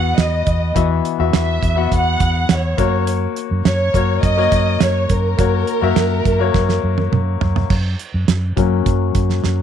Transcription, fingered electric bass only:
Already playing: E2
0.18 E2
0.47 E2
0.76 E2
1.19 E2
1.34 E2
1.62 E2
1.92 E2
2.20 E2
2.50 E2
2.78 F#2
3.51 F#2
3.65 F#2
3.94 F#2
4.23 F#2
4.52 F#2
4.81 F#2
5.10 F#2
5.39 F#2
5.82 F#2
5.96 F#2
6.25 F#2
6.54 F#2
6.84 F#2
7.12 F#2
7.41 F#2
7.70 F#2
8.14 F#2
8.28 F#2
8.57 F#2
8.86 F#2
9.15 F#2
9.45 F#2

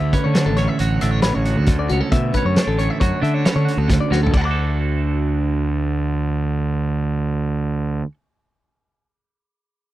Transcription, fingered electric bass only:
Already playing: D2
0.26 D3
0.46 A1
0.80 A1
1.02 A1
1.36 A1
1.57 D2
1.91 C#2
2.12 B2
2.45 F#2
2.67 A1
3.01 F#2
3.22 D3
3.56 D3
3.77 D2
4.11 D2
4.34 D2

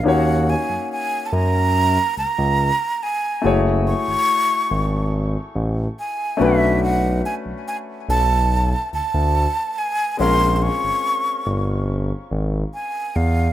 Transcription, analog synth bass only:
0.06 D#2
0.69 F#2
1.33 F#2
2.17 C#2
2.38 C#2
3.44 F#1
4.08 G#1
4.71 G#1
5.55 A1
6.40 B1
7.45 B1
8.09 B1
8.93 D2
9.14 D2
10.20 A#1
10.83 G1
11.47 G1
12.31 G#1
13.16 E2

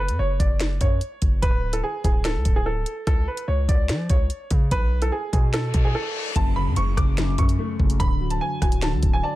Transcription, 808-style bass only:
Already playing: F#1
0.09 F#2
0.19 F#1
0.40 F#1
0.81 F#2
1.22 F#1
1.43 D1
2.04 D1
2.35 D2
2.45 D1
3.07 C#2
3.48 C#2
3.69 C#2
3.89 F3
4.10 C#2
4.51 C#3
4.71 B1
5.33 B2
5.74 B2
6.36 F#1
6.67 F#2
6.77 F#1
6.97 F#1
7.38 F#2
7.79 F#1
8.00 D1
8.62 D1
8.93 D2
9.03 D1

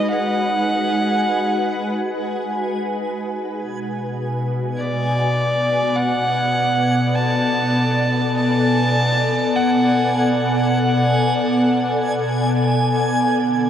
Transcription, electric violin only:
Already playing: D#5
0.09 F#5
4.78 D5
5.96 F#5
7.15 A5
8.37 A5
9.56 F#5
10.17 F#5

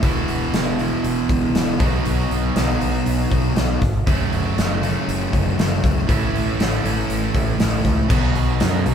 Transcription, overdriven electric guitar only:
0.02 E2 B2 E3 B3 E4 F#4
1.79 B2 F#3 B3 D#4 F#4
4.07 F#2 C#3 F#3 A3 C#4 F#4
6.07 A2 E3 A3 C#4 E4
8.08 B2 F#3 B3 D#4 F#4

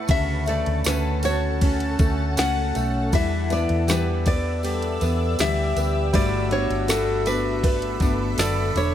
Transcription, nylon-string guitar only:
0.11 E5
0.49 D5
0.87 B4
1.25 C#5
2.39 F#5
3.15 E5
3.52 D5
3.90 B4
4.27 D5
5.41 E5
6.15 D5
6.52 C#5
6.89 A4
7.27 B4
8.40 D5
8.77 C#5

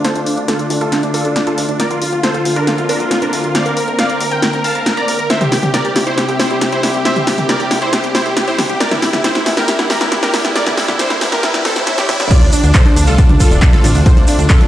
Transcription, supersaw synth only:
0.05 A4 C5
0.15 D4
0.26 D4
0.37 D4
0.48 F4 A4
0.59 D4
0.70 D4
0.81 F4 A4
0.92 D4
1.03 D4
1.14 F4 A4
1.25 D4
1.36 D4
1.47 F4 A4
1.58 D4
1.69 D4
1.80 A#4 D5
1.91 F4
2.02 F4
2.13 F4
2.23 A4 C5
2.34 F4
2.45 F4
2.56 D4 A#4
2.67 F4
2.78 F4
2.89 D4 A#4
3.00 F4
3.11 F4
3.22 D4 A#4
3.33 F4
3.44 F4
3.55 D5 F5
3.66 A#4
3.77 A#4
3.88 A#4
3.99 D5 F5
4.10 A#4
4.21 A#4
4.32 A#4 G5
4.43 A#4
4.53 A#4
4.64 F5 A5
4.75 A#4
4.86 A#4
4.97 D5 A#5
5.08 A#4
5.19 A#4
5.30 C5 E5
5.41 G4
5.52 G4
5.63 G4
5.74 A#4 D5
5.85 G4
5.96 G4
6.07 E4 C5
6.18 G4
6.29 G4
6.40 E4 C5
6.51 G4
6.62 G4
6.72 E4 C5
6.83 G4
6.94 G4
7.05 C5 E5
7.16 G4
7.27 G4
7.38 G4
7.49 A#4 D5
7.60 G4
7.71 G4
7.82 E4 C5
7.93 G4
8.04 G4
8.15 E4 C5
8.26 G4
8.37 G4
8.48 E4 C5
8.59 G4
8.69 G4
8.80 A#4 D5
8.91 E4
9.02 E4
9.13 E4
9.24 E4 C5
9.35 E4
9.46 E4
9.57 G4 A#4
9.68 E4
9.79 E4
9.90 G4 A#4
10.01 E4
10.12 E4
10.23 G4 A#4
10.34 E4
10.45 E4
10.56 A#4 D5
10.66 E4
10.77 E4
10.88 E4
10.99 E4 C5
11.10 E4
11.21 E4
11.32 G4 A#4
11.43 E4
11.54 E4
11.65 C4 A4
11.76 E4
11.87 E4
11.98 E4 G4
12.09 E4
12.20 E4
12.31 F4 D5
12.42 D4
12.53 D4
12.64 D4
12.75 A4 C5
12.85 D4
12.96 D4
13.07 F4 A4
13.18 D4
13.29 D4
13.40 F4 A4
13.51 D4
13.62 D4
13.73 F4 A4
13.84 D4
13.95 D4
14.06 A4 C5
14.17 D4
14.28 D4
14.39 D4
14.50 F4 A4
14.61 D4

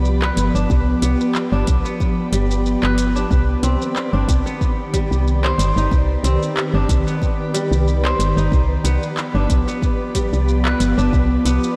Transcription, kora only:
Already playing: G3 B3 D4
0.22 B4
0.55 D4
1.02 B3
1.53 D4
1.85 B3
2.33 G3
2.83 B4
3.15 D4
3.63 C4
4.13 D4
4.46 B3
4.93 G3
5.44 C5
5.77 D#4
6.24 C4
6.74 D4
7.07 B3
7.54 G3
8.05 C5
8.37 D#4
8.84 B3
9.35 D4
9.68 B3
10.15 G3
10.65 B4
10.98 D4
11.46 B3

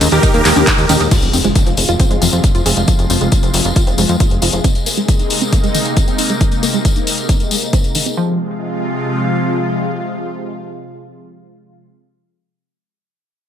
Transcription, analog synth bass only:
0.01 D#2
0.12 D#2
0.34 D#2
0.45 D#2
0.56 D#2
0.78 D#2
0.89 D#2
1.00 D#2
1.22 F1
1.33 F1
1.44 F1
1.66 F1
1.77 F1
1.89 F1
2.11 F1
2.22 F1
2.33 F2
2.55 F1
2.66 F1
2.77 F1
2.99 F1
3.10 F1
3.21 F1
3.43 F1
3.54 F1
3.65 F1
3.87 F1
3.98 F1
4.09 F2
4.31 F1
4.42 F1
4.53 F1

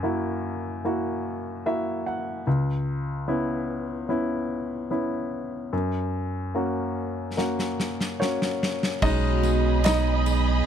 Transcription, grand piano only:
Already playing: F#2
0.03 A#3 E4 F#4
0.85 A#3 E4 F#4
1.66 A#3 E4 F#4 E5
2.06 F#5
2.47 C#2
3.28 B3 C#4 E4
4.09 B3 C#4 E4
4.91 B3 C#4 E4
5.73 F#2
6.55 A#3 C#4 F#4
7.37 A#3 C#4 F#4
8.20 A#3 C#4 F#4 C#5
9.02 G#3 C#4 D#4 D#5
9.85 D#4 D#5

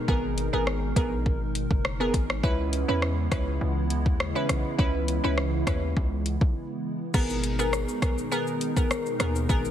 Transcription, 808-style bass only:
0.08 G#1
0.53 G#1
0.96 A#1
1.26 G#1
1.71 F#1
2.14 G#1
2.44 C#2
2.88 E2
3.32 C#2
3.61 C#2
4.06 D#2
4.50 B1
4.79 C#2
5.24 C#2
5.67 D#2
5.97 C#2
6.41 B1
7.14 G#1
8.02 B1
9.20 D#2
9.49 G#1

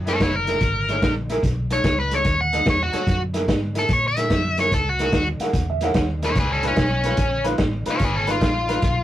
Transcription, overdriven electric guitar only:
0.08 C#4 A4
0.23 E4 C#5
0.36 A#4
1.73 C#5
2.00 B4
2.14 C#5
2.41 F#5
2.70 C#5
2.83 F#4
3.79 A4
3.93 C#5
4.08 E5
4.60 C#5
4.74 A4
4.89 F#4
6.25 E4 C#5
6.39 G#4 B4
6.52 C#4 A4
6.67 C#4
7.90 F4 C#5
8.04 G#4 B4
8.15 C#4 A4
8.31 F4

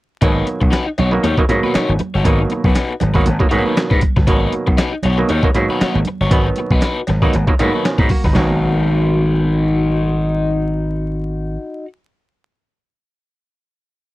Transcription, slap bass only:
0.22 G#1
0.62 B1
0.99 B1
1.23 D#2
1.49 G#2
1.75 muted slap bass stroke
1.89 G#1
2.15 G1
2.25 G#1
2.64 B1
3.02 G#1
3.27 G#1
3.52 G#2
3.91 G#2
4.17 G1
4.28 G#1
4.67 B1
5.05 B1
5.30 D#2
5.55 G#2
5.81 muted slap bass stroke
5.95 G#1
6.21 G1
6.31 G#1
6.71 B1
7.09 G#1
7.35 G#1
7.60 G#2
7.99 G#2
8.24 G1
8.36 G#1

